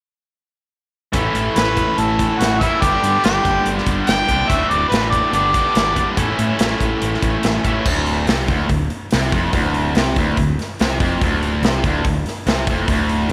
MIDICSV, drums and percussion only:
0, 0, Header, 1, 2, 480
1, 0, Start_track
1, 0, Tempo, 419580
1, 1297, Time_signature, 4, 2, 24, 8
1, 15243, End_track
2, 0, Start_track
2, 0, Title_t, "Drums"
2, 1297, Note_on_c, 9, 42, 70
2, 1303, Note_on_c, 9, 36, 90
2, 1411, Note_off_c, 9, 42, 0
2, 1417, Note_off_c, 9, 36, 0
2, 1544, Note_on_c, 9, 42, 55
2, 1659, Note_off_c, 9, 42, 0
2, 1785, Note_on_c, 9, 42, 75
2, 1806, Note_on_c, 9, 38, 91
2, 1900, Note_off_c, 9, 42, 0
2, 1920, Note_off_c, 9, 38, 0
2, 2022, Note_on_c, 9, 42, 51
2, 2026, Note_on_c, 9, 36, 70
2, 2136, Note_off_c, 9, 42, 0
2, 2140, Note_off_c, 9, 36, 0
2, 2266, Note_on_c, 9, 42, 73
2, 2380, Note_off_c, 9, 42, 0
2, 2508, Note_on_c, 9, 36, 73
2, 2514, Note_on_c, 9, 42, 55
2, 2623, Note_off_c, 9, 36, 0
2, 2629, Note_off_c, 9, 42, 0
2, 2752, Note_on_c, 9, 42, 74
2, 2772, Note_on_c, 9, 38, 88
2, 2866, Note_off_c, 9, 42, 0
2, 2887, Note_off_c, 9, 38, 0
2, 2989, Note_on_c, 9, 36, 76
2, 2994, Note_on_c, 9, 42, 54
2, 3103, Note_off_c, 9, 36, 0
2, 3109, Note_off_c, 9, 42, 0
2, 3228, Note_on_c, 9, 36, 92
2, 3231, Note_on_c, 9, 42, 71
2, 3343, Note_off_c, 9, 36, 0
2, 3345, Note_off_c, 9, 42, 0
2, 3474, Note_on_c, 9, 42, 58
2, 3588, Note_off_c, 9, 42, 0
2, 3704, Note_on_c, 9, 42, 69
2, 3725, Note_on_c, 9, 38, 100
2, 3818, Note_off_c, 9, 42, 0
2, 3839, Note_off_c, 9, 38, 0
2, 3947, Note_on_c, 9, 36, 72
2, 3949, Note_on_c, 9, 42, 48
2, 4062, Note_off_c, 9, 36, 0
2, 4063, Note_off_c, 9, 42, 0
2, 4184, Note_on_c, 9, 42, 62
2, 4298, Note_off_c, 9, 42, 0
2, 4325, Note_on_c, 9, 38, 26
2, 4420, Note_on_c, 9, 42, 49
2, 4422, Note_on_c, 9, 36, 76
2, 4440, Note_off_c, 9, 38, 0
2, 4535, Note_off_c, 9, 42, 0
2, 4537, Note_off_c, 9, 36, 0
2, 4659, Note_on_c, 9, 42, 70
2, 4679, Note_on_c, 9, 38, 95
2, 4773, Note_off_c, 9, 42, 0
2, 4794, Note_off_c, 9, 38, 0
2, 4904, Note_on_c, 9, 42, 53
2, 4905, Note_on_c, 9, 36, 71
2, 5018, Note_off_c, 9, 42, 0
2, 5019, Note_off_c, 9, 36, 0
2, 5145, Note_on_c, 9, 36, 92
2, 5145, Note_on_c, 9, 42, 68
2, 5259, Note_off_c, 9, 42, 0
2, 5260, Note_off_c, 9, 36, 0
2, 5388, Note_on_c, 9, 42, 54
2, 5503, Note_off_c, 9, 42, 0
2, 5629, Note_on_c, 9, 42, 72
2, 5650, Note_on_c, 9, 38, 100
2, 5744, Note_off_c, 9, 42, 0
2, 5764, Note_off_c, 9, 38, 0
2, 5864, Note_on_c, 9, 36, 70
2, 5871, Note_on_c, 9, 42, 53
2, 5978, Note_off_c, 9, 36, 0
2, 5986, Note_off_c, 9, 42, 0
2, 6103, Note_on_c, 9, 42, 75
2, 6217, Note_off_c, 9, 42, 0
2, 6341, Note_on_c, 9, 36, 77
2, 6342, Note_on_c, 9, 42, 59
2, 6456, Note_off_c, 9, 36, 0
2, 6456, Note_off_c, 9, 42, 0
2, 6580, Note_on_c, 9, 42, 71
2, 6601, Note_on_c, 9, 38, 96
2, 6694, Note_off_c, 9, 42, 0
2, 6715, Note_off_c, 9, 38, 0
2, 6822, Note_on_c, 9, 36, 77
2, 6823, Note_on_c, 9, 42, 60
2, 6937, Note_off_c, 9, 36, 0
2, 6938, Note_off_c, 9, 42, 0
2, 7061, Note_on_c, 9, 42, 81
2, 7062, Note_on_c, 9, 36, 95
2, 7176, Note_off_c, 9, 42, 0
2, 7177, Note_off_c, 9, 36, 0
2, 7309, Note_on_c, 9, 42, 54
2, 7423, Note_off_c, 9, 42, 0
2, 7539, Note_on_c, 9, 42, 79
2, 7560, Note_on_c, 9, 38, 101
2, 7654, Note_off_c, 9, 42, 0
2, 7674, Note_off_c, 9, 38, 0
2, 7784, Note_on_c, 9, 36, 71
2, 7791, Note_on_c, 9, 42, 51
2, 7899, Note_off_c, 9, 36, 0
2, 7906, Note_off_c, 9, 42, 0
2, 8027, Note_on_c, 9, 42, 75
2, 8142, Note_off_c, 9, 42, 0
2, 8172, Note_on_c, 9, 38, 26
2, 8264, Note_on_c, 9, 42, 50
2, 8265, Note_on_c, 9, 36, 73
2, 8286, Note_off_c, 9, 38, 0
2, 8379, Note_off_c, 9, 42, 0
2, 8380, Note_off_c, 9, 36, 0
2, 8500, Note_on_c, 9, 42, 68
2, 8521, Note_on_c, 9, 38, 93
2, 8615, Note_off_c, 9, 42, 0
2, 8635, Note_off_c, 9, 38, 0
2, 8746, Note_on_c, 9, 36, 77
2, 8747, Note_on_c, 9, 42, 49
2, 8860, Note_off_c, 9, 36, 0
2, 8861, Note_off_c, 9, 42, 0
2, 8986, Note_on_c, 9, 49, 89
2, 8987, Note_on_c, 9, 36, 94
2, 9100, Note_off_c, 9, 49, 0
2, 9102, Note_off_c, 9, 36, 0
2, 9226, Note_on_c, 9, 46, 49
2, 9340, Note_off_c, 9, 46, 0
2, 9463, Note_on_c, 9, 46, 64
2, 9484, Note_on_c, 9, 38, 106
2, 9577, Note_off_c, 9, 46, 0
2, 9598, Note_off_c, 9, 38, 0
2, 9701, Note_on_c, 9, 46, 46
2, 9706, Note_on_c, 9, 36, 92
2, 9816, Note_off_c, 9, 46, 0
2, 9820, Note_off_c, 9, 36, 0
2, 9944, Note_on_c, 9, 46, 62
2, 9947, Note_on_c, 9, 36, 77
2, 10058, Note_off_c, 9, 46, 0
2, 10062, Note_off_c, 9, 36, 0
2, 10183, Note_on_c, 9, 46, 46
2, 10298, Note_off_c, 9, 46, 0
2, 10418, Note_on_c, 9, 46, 62
2, 10439, Note_on_c, 9, 38, 93
2, 10532, Note_off_c, 9, 46, 0
2, 10553, Note_off_c, 9, 38, 0
2, 10666, Note_on_c, 9, 36, 101
2, 10667, Note_on_c, 9, 46, 50
2, 10780, Note_off_c, 9, 36, 0
2, 10781, Note_off_c, 9, 46, 0
2, 10900, Note_on_c, 9, 46, 63
2, 10905, Note_on_c, 9, 36, 93
2, 11015, Note_off_c, 9, 46, 0
2, 11019, Note_off_c, 9, 36, 0
2, 11146, Note_on_c, 9, 46, 46
2, 11261, Note_off_c, 9, 46, 0
2, 11382, Note_on_c, 9, 46, 63
2, 11403, Note_on_c, 9, 38, 96
2, 11497, Note_off_c, 9, 46, 0
2, 11517, Note_off_c, 9, 38, 0
2, 11627, Note_on_c, 9, 36, 83
2, 11630, Note_on_c, 9, 46, 44
2, 11742, Note_off_c, 9, 36, 0
2, 11744, Note_off_c, 9, 46, 0
2, 11865, Note_on_c, 9, 46, 57
2, 11867, Note_on_c, 9, 36, 77
2, 11980, Note_off_c, 9, 46, 0
2, 11981, Note_off_c, 9, 36, 0
2, 12117, Note_on_c, 9, 46, 46
2, 12138, Note_on_c, 9, 38, 29
2, 12231, Note_off_c, 9, 46, 0
2, 12252, Note_off_c, 9, 38, 0
2, 12349, Note_on_c, 9, 46, 56
2, 12370, Note_on_c, 9, 38, 95
2, 12463, Note_off_c, 9, 46, 0
2, 12484, Note_off_c, 9, 38, 0
2, 12587, Note_on_c, 9, 36, 100
2, 12592, Note_on_c, 9, 46, 46
2, 12702, Note_off_c, 9, 36, 0
2, 12706, Note_off_c, 9, 46, 0
2, 12829, Note_on_c, 9, 36, 98
2, 12836, Note_on_c, 9, 46, 58
2, 12944, Note_off_c, 9, 36, 0
2, 12950, Note_off_c, 9, 46, 0
2, 13072, Note_on_c, 9, 46, 47
2, 13187, Note_off_c, 9, 46, 0
2, 13304, Note_on_c, 9, 46, 57
2, 13325, Note_on_c, 9, 38, 97
2, 13418, Note_off_c, 9, 46, 0
2, 13439, Note_off_c, 9, 38, 0
2, 13543, Note_on_c, 9, 36, 92
2, 13545, Note_on_c, 9, 46, 45
2, 13658, Note_off_c, 9, 36, 0
2, 13659, Note_off_c, 9, 46, 0
2, 13781, Note_on_c, 9, 46, 59
2, 13782, Note_on_c, 9, 36, 79
2, 13895, Note_off_c, 9, 46, 0
2, 13896, Note_off_c, 9, 36, 0
2, 14024, Note_on_c, 9, 46, 47
2, 14045, Note_on_c, 9, 38, 29
2, 14138, Note_off_c, 9, 46, 0
2, 14159, Note_off_c, 9, 38, 0
2, 14262, Note_on_c, 9, 46, 64
2, 14283, Note_on_c, 9, 38, 97
2, 14376, Note_off_c, 9, 46, 0
2, 14397, Note_off_c, 9, 38, 0
2, 14495, Note_on_c, 9, 46, 46
2, 14496, Note_on_c, 9, 36, 97
2, 14609, Note_off_c, 9, 46, 0
2, 14610, Note_off_c, 9, 36, 0
2, 14733, Note_on_c, 9, 46, 63
2, 14735, Note_on_c, 9, 36, 97
2, 14848, Note_off_c, 9, 46, 0
2, 14849, Note_off_c, 9, 36, 0
2, 14979, Note_on_c, 9, 46, 51
2, 15093, Note_off_c, 9, 46, 0
2, 15243, End_track
0, 0, End_of_file